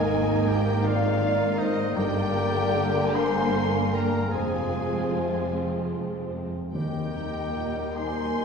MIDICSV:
0, 0, Header, 1, 11, 480
1, 0, Start_track
1, 0, Tempo, 741656
1, 1265, Time_signature, 6, 3, 24, 8
1, 1265, Tempo, 795756
1, 3665, Tempo, 809717
1, 5156, End_track
2, 0, Start_track
2, 0, Title_t, "Violin section"
2, 0, Program_c, 0, 48
2, 0, Note_on_c, 0, 80, 97
2, 299, Note_off_c, 0, 80, 0
2, 310, Note_on_c, 0, 79, 96
2, 547, Note_off_c, 0, 79, 0
2, 547, Note_on_c, 0, 77, 103
2, 1021, Note_on_c, 0, 75, 101
2, 1024, Note_off_c, 0, 77, 0
2, 1255, Note_on_c, 0, 79, 113
2, 1264, Note_off_c, 0, 75, 0
2, 1970, Note_off_c, 0, 79, 0
2, 1985, Note_on_c, 0, 84, 97
2, 2461, Note_on_c, 0, 82, 84
2, 2462, Note_off_c, 0, 84, 0
2, 2697, Note_on_c, 0, 80, 79
2, 2700, Note_off_c, 0, 82, 0
2, 3406, Note_off_c, 0, 80, 0
2, 4144, Note_on_c, 0, 79, 81
2, 4848, Note_off_c, 0, 79, 0
2, 4873, Note_on_c, 0, 84, 92
2, 5156, Note_off_c, 0, 84, 0
2, 5156, End_track
3, 0, Start_track
3, 0, Title_t, "Flute section"
3, 0, Program_c, 1, 73
3, 0, Note_on_c, 1, 75, 91
3, 298, Note_off_c, 1, 75, 0
3, 319, Note_on_c, 1, 75, 82
3, 544, Note_on_c, 1, 74, 92
3, 547, Note_off_c, 1, 75, 0
3, 1023, Note_off_c, 1, 74, 0
3, 1026, Note_on_c, 1, 72, 87
3, 1261, Note_off_c, 1, 72, 0
3, 1264, Note_on_c, 1, 74, 99
3, 1983, Note_on_c, 1, 80, 102
3, 1989, Note_off_c, 1, 74, 0
3, 2452, Note_off_c, 1, 80, 0
3, 2461, Note_on_c, 1, 79, 80
3, 2694, Note_on_c, 1, 77, 76
3, 2700, Note_off_c, 1, 79, 0
3, 3420, Note_off_c, 1, 77, 0
3, 4137, Note_on_c, 1, 75, 71
3, 4845, Note_off_c, 1, 75, 0
3, 4867, Note_on_c, 1, 80, 80
3, 5156, Note_off_c, 1, 80, 0
3, 5156, End_track
4, 0, Start_track
4, 0, Title_t, "Oboe"
4, 0, Program_c, 2, 68
4, 0, Note_on_c, 2, 68, 78
4, 312, Note_on_c, 2, 67, 88
4, 322, Note_off_c, 2, 68, 0
4, 555, Note_on_c, 2, 65, 104
4, 565, Note_off_c, 2, 67, 0
4, 1023, Note_on_c, 2, 63, 92
4, 1033, Note_off_c, 2, 65, 0
4, 1273, Note_on_c, 2, 67, 101
4, 1282, Note_off_c, 2, 63, 0
4, 1989, Note_on_c, 2, 72, 113
4, 1998, Note_off_c, 2, 67, 0
4, 2368, Note_off_c, 2, 72, 0
4, 2470, Note_on_c, 2, 70, 75
4, 2691, Note_on_c, 2, 68, 74
4, 2700, Note_off_c, 2, 70, 0
4, 3418, Note_off_c, 2, 68, 0
4, 4140, Note_on_c, 2, 67, 67
4, 4873, Note_on_c, 2, 72, 80
4, 4882, Note_off_c, 2, 67, 0
4, 5156, Note_off_c, 2, 72, 0
4, 5156, End_track
5, 0, Start_track
5, 0, Title_t, "Violin section"
5, 0, Program_c, 3, 48
5, 0, Note_on_c, 3, 58, 82
5, 0, Note_on_c, 3, 70, 75
5, 1243, Note_off_c, 3, 58, 0
5, 1244, Note_off_c, 3, 70, 0
5, 1260, Note_on_c, 3, 58, 83
5, 1260, Note_on_c, 3, 70, 82
5, 2675, Note_off_c, 3, 58, 0
5, 2675, Note_off_c, 3, 70, 0
5, 2699, Note_on_c, 3, 65, 63
5, 2700, Note_on_c, 3, 60, 70
5, 3994, Note_off_c, 3, 60, 0
5, 4017, Note_off_c, 3, 65, 0
5, 4145, Note_on_c, 3, 70, 55
5, 4146, Note_on_c, 3, 63, 54
5, 5156, Note_off_c, 3, 63, 0
5, 5156, Note_off_c, 3, 70, 0
5, 5156, End_track
6, 0, Start_track
6, 0, Title_t, "French horn section"
6, 0, Program_c, 4, 60
6, 0, Note_on_c, 4, 51, 81
6, 0, Note_on_c, 4, 70, 75
6, 1238, Note_off_c, 4, 51, 0
6, 1238, Note_off_c, 4, 70, 0
6, 1267, Note_on_c, 4, 50, 82
6, 1268, Note_on_c, 4, 70, 85
6, 2679, Note_off_c, 4, 50, 0
6, 2679, Note_off_c, 4, 70, 0
6, 2701, Note_on_c, 4, 48, 67
6, 2701, Note_on_c, 4, 72, 63
6, 3919, Note_off_c, 4, 48, 0
6, 3919, Note_off_c, 4, 72, 0
6, 4139, Note_on_c, 4, 51, 61
6, 4144, Note_on_c, 4, 70, 60
6, 5156, Note_off_c, 4, 51, 0
6, 5156, Note_off_c, 4, 70, 0
6, 5156, End_track
7, 0, Start_track
7, 0, Title_t, "Grand piano"
7, 0, Program_c, 5, 0
7, 0, Control_c, 5, 64, 127
7, 0, Note_on_c, 5, 44, 73
7, 68, Note_on_c, 5, 63, 53
7, 305, Note_on_c, 5, 51, 55
7, 450, Note_off_c, 5, 63, 0
7, 544, Note_on_c, 5, 63, 68
7, 688, Note_off_c, 5, 51, 0
7, 785, Note_on_c, 5, 58, 68
7, 928, Note_off_c, 5, 63, 0
7, 1030, Note_on_c, 5, 63, 60
7, 1168, Note_off_c, 5, 58, 0
7, 1244, Note_off_c, 5, 44, 0
7, 1268, Note_off_c, 5, 63, 0
7, 1271, Note_on_c, 5, 43, 78
7, 1275, Control_c, 5, 64, 0
7, 1382, Control_c, 5, 64, 127
7, 1501, Note_on_c, 5, 58, 66
7, 1749, Note_on_c, 5, 50, 56
7, 1893, Note_off_c, 5, 58, 0
7, 1996, Note_on_c, 5, 58, 65
7, 2136, Note_off_c, 5, 50, 0
7, 2226, Note_on_c, 5, 50, 57
7, 2373, Note_off_c, 5, 58, 0
7, 2464, Note_on_c, 5, 58, 56
7, 2605, Note_off_c, 5, 50, 0
7, 2681, Note_off_c, 5, 43, 0
7, 2698, Note_on_c, 5, 41, 64
7, 2701, Note_off_c, 5, 58, 0
7, 2712, Control_c, 5, 64, 0
7, 2826, Control_c, 5, 64, 127
7, 2935, Note_on_c, 5, 60, 47
7, 3175, Note_on_c, 5, 48, 44
7, 3324, Note_off_c, 5, 60, 0
7, 3421, Note_on_c, 5, 60, 47
7, 3564, Note_off_c, 5, 48, 0
7, 3672, Note_on_c, 5, 56, 48
7, 3806, Note_off_c, 5, 60, 0
7, 3903, Note_on_c, 5, 60, 39
7, 4051, Note_off_c, 5, 56, 0
7, 4117, Note_off_c, 5, 41, 0
7, 4143, Note_off_c, 5, 60, 0
7, 4145, Note_on_c, 5, 39, 52
7, 4154, Control_c, 5, 64, 0
7, 4251, Control_c, 5, 64, 127
7, 4388, Note_on_c, 5, 63, 46
7, 4626, Note_on_c, 5, 46, 44
7, 4778, Note_off_c, 5, 63, 0
7, 4874, Note_on_c, 5, 63, 48
7, 5012, Note_off_c, 5, 46, 0
7, 5106, Note_on_c, 5, 58, 45
7, 5156, Note_off_c, 5, 39, 0
7, 5156, Note_off_c, 5, 58, 0
7, 5156, Note_off_c, 5, 63, 0
7, 5156, End_track
8, 0, Start_track
8, 0, Title_t, "Viola section"
8, 0, Program_c, 6, 48
8, 0, Note_on_c, 6, 51, 70
8, 0, Note_on_c, 6, 58, 72
8, 1241, Note_off_c, 6, 51, 0
8, 1242, Note_off_c, 6, 58, 0
8, 1263, Note_on_c, 6, 58, 83
8, 1265, Note_on_c, 6, 50, 84
8, 2677, Note_off_c, 6, 58, 0
8, 2700, Note_on_c, 6, 53, 57
8, 2700, Note_on_c, 6, 56, 69
8, 2702, Note_off_c, 6, 50, 0
8, 3994, Note_off_c, 6, 53, 0
8, 3994, Note_off_c, 6, 56, 0
8, 4143, Note_on_c, 6, 55, 48
8, 4144, Note_on_c, 6, 58, 54
8, 5156, Note_off_c, 6, 55, 0
8, 5156, Note_off_c, 6, 58, 0
8, 5156, End_track
9, 0, Start_track
9, 0, Title_t, "Timpani"
9, 0, Program_c, 7, 47
9, 4139, Note_on_c, 7, 51, 78
9, 4846, Note_off_c, 7, 51, 0
9, 5156, End_track
10, 0, Start_track
10, 0, Title_t, "Cello section"
10, 0, Program_c, 8, 48
10, 0, Note_on_c, 8, 44, 82
10, 1242, Note_off_c, 8, 44, 0
10, 1268, Note_on_c, 8, 43, 87
10, 2679, Note_off_c, 8, 43, 0
10, 2702, Note_on_c, 8, 41, 67
10, 3995, Note_off_c, 8, 41, 0
10, 4140, Note_on_c, 8, 39, 58
10, 5156, Note_off_c, 8, 39, 0
10, 5156, End_track
11, 0, Start_track
11, 0, Title_t, "Double bass section"
11, 0, Program_c, 10, 48
11, 0, Note_on_c, 10, 32, 83
11, 1239, Note_off_c, 10, 32, 0
11, 1263, Note_on_c, 10, 31, 86
11, 2676, Note_off_c, 10, 31, 0
11, 2700, Note_on_c, 10, 29, 72
11, 3994, Note_off_c, 10, 29, 0
11, 4144, Note_on_c, 10, 39, 55
11, 5156, Note_off_c, 10, 39, 0
11, 5156, End_track
0, 0, End_of_file